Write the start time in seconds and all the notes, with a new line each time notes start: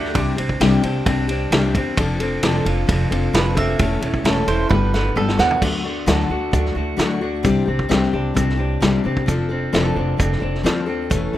Already playing: D2 D3 A3 D4 F#4 G4
0.05 snare
0.14 C2 C3 G3 C4 D4 G4, kick, ride
0.36 C2 C4 D4 G4, ride
0.49 kick
0.60 C2 C3 G3 C4 D4 G4, snare, ride
0.82 C2 C4 D4 G4, ride
1.06 C2 G3 C4 D4 G4, kick, ride
1.28 C4 D4 G4, ride
1.51 C2 C3 G3 C4 D4 G4, snare, ride
1.75 E2 C4 D4 G4, kick, ride
1.97 F1 F3 C4 D4 A4, kick, ride
2.20 C4 D4 A4, ride
2.43 F1 F3 C4 D4 A4, snare, ride
2.65 F1 C4 D4 F4 A4, ride
2.87 F1 F3 C4 D4 A4, kick, ride
3.11 F1 C4 D4 F4 A4, ride
3.33 F1 D3 F3 C4 D4 A4 B4, snare, ride
3.55 C4 D4 A4 E5, kick, ride
3.79 E1 E2 E3 A3 C#4 A4, kick, ride
4.01 E1 A3 C#4 A4, ride
4.14 kick
4.24 E1 E3 A3 C#4 A4, snare, ride
4.47 E1 A3 C#4 E4 A4 C5, ride
4.69 G1 G3 B3 D4 A4 B4, kick, high tom
4.94 B3 D4 A4 B4, snare
5.16 G1 G3 B3 D4 A4, mid tom
5.29 snare
5.38 E2 B3 D4 F#4 A4, snare
5.51 floor tom
5.62 D2 D3 F#3 A3 D4 F#4, kick, crash
5.84 A3 D4 F#4
6.06 D2 D3 F#3 A3 D4 F#4 A4, snare, closed hi-hat
6.20 snare
6.30 D2 A3 D4 F#4
6.51 D2 F#3 A3 D4 F#4, kick, closed hi-hat
6.65 snare
6.75 D2 A3 D4 F#4
6.97 D2 D3 F#3 A3 D4 F#4, snare, closed hi-hat
7.21 A3 D4 F#4
7.43 C2 C3 G3 C4 D4 G4, kick, closed hi-hat
7.66 C2 C4 D4 G4
7.79 kick
7.89 C2 C3 G3 C4 D4 G4, snare, closed hi-hat
8.03 snare
8.13 C2 C4 D4 G4
8.34 C2 G3 C4 D4 G4, kick, closed hi-hat
8.49 snare
8.57 C4 D4 G4
8.80 C2 C3 G3 C4 D4 G4, snare, closed hi-hat
9.04 C2 C4 D4 G4
9.17 kick
9.26 F1 F3 C4 D4 A4, kick, closed hi-hat
9.49 C4 D4 A4
9.73 F1 F3 C4 D4 A4, snare, closed hi-hat
9.96 F1 C4 D4 A4
10.17 F1 F3 C4 D4 A4, kick, closed hi-hat
10.32 snare
10.40 F1 C4 D4 A4
10.55 snare
10.63 D#2 F3 C4 D4 A4, snare, closed hi-hat
10.86 C4 D4 A4
11.10 E1 E3 A3 C#4 A4, kick, closed hi-hat
11.33 E1 A3 C#4 A4